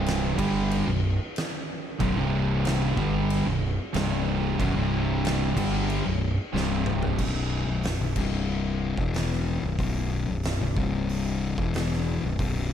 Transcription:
Already playing: fingered electric bass C1, distorted electric guitar C2 G2 C3
0.06 snare, crash
0.38 fingered electric bass G1, distorted electric guitar G2 D3 G3, kick, crash
0.71 crash
0.86 fingered electric bass B0, distorted electric guitar B1 F#2
1.36 snare, crash
2.00 fingered electric bass B0, distorted electric guitar B1 F#2, kick, crash
2.16 fingered electric bass C1, distorted electric guitar C2 G2 C3
2.65 snare, crash
2.97 fingered electric bass G1, distorted electric guitar G2 D3 G3, kick
3.30 crash
3.46 fingered electric bass B0, distorted electric guitar B1 F#2
3.94 fingered electric bass C1, distorted electric guitar C2 G2 C3, snare, crash
4.59 fingered electric bass B0, distorted electric guitar B1 F#2, kick, crash
4.76 fingered electric bass C1, distorted electric guitar C2 G2 C3
5.25 snare, crash
5.57 fingered electric bass G1, distorted electric guitar G2 D3 G3, kick, crash
5.90 crash
6.06 fingered electric bass B0, distorted electric guitar B1 F#2
6.54 fingered electric bass C1, distorted electric guitar C2 G2 C3, snare
6.86 mid tom
7.03 floor tom
7.19 fingered electric bass B0, distorted electric guitar B1 F#2 B2, kick, crash
7.68 fingered electric bass B0, distorted electric guitar B1 F#2
7.83 snare, open hi-hat
8.00 fingered electric bass B0, distorted electric guitar B1 F#2
8.16 fingered electric bass C1, distorted electric guitar C2 G2 C3, kick, snare, crash
8.97 fingered electric bass E1, distorted electric guitar E2 B2 E3, kick
9.14 snare, open hi-hat
9.32 snare
9.63 fingered electric bass B0, distorted electric guitar B1 F#2
9.79 fingered electric bass B0, distorted electric guitar B1 F#2 B2, kick, open hi-hat
10.28 fingered electric bass B0, distorted electric guitar B1 F#2
10.43 snare, open hi-hat
10.61 fingered electric bass B0, distorted electric guitar B1 F#2
10.76 fingered electric bass C1, distorted electric guitar C2 G2 C3, kick
11.09 open hi-hat
11.58 fingered electric bass E1, distorted electric guitar E2 B2 E3, kick
11.74 snare, open hi-hat
11.93 snare
12.23 fingered electric bass B0, distorted electric guitar B1 F#2
12.39 fingered electric bass B0, distorted electric guitar B1 F#2 B2, kick, open hi-hat

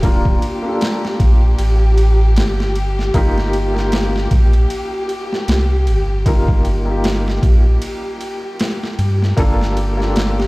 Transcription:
Already playing: sub bass D1, string section G4
0.02 upright piano A#3 D4 F4 A#4, kick, ride
0.25 kick
0.42 ride
0.62 upright piano A#3 D4 F4
0.68 upright piano A4
0.81 snare, ride
1.05 snare
1.20 sub bass A#1, kick, ride
1.58 sub bass A1, ride
1.98 ride
2.36 sub bass G1, snare, ride
2.60 snare
2.75 ride
2.99 snare
3.14 sub bass G1, upright piano A#3 D#4 F4 G4, kick, ride
3.38 snare
3.53 ride
3.74 upright piano A#3 D#4 F4, snare
3.79 upright piano G4
3.92 snare, ride
4.16 snare
4.31 sub bass A#1, kick, ride
4.53 ride
4.70 ride
5.09 ride
5.33 snare
5.48 sub bass C2, snare, ride
5.87 sub bass G1, ride
6.26 upright piano A#3 D#4 F4 A#4, kick, ride
6.48 kick
6.65 ride
6.85 upright piano A#3 D#4 F4
6.91 upright piano G4
7.04 snare, ride
7.28 snare
7.43 sub bass A#1, kick, ride
7.82 ride
8.21 ride
8.59 snare, ride
8.83 snare
8.99 sub bass G2, ride
9.22 snare
9.37 sub bass G1, upright piano A#3 D4 F4 A4, string section G4, kick, ride
9.61 snare
9.77 ride
9.97 upright piano A#3 D4 F4, snare
10.03 upright piano A4
10.16 snare, ride
10.40 snare

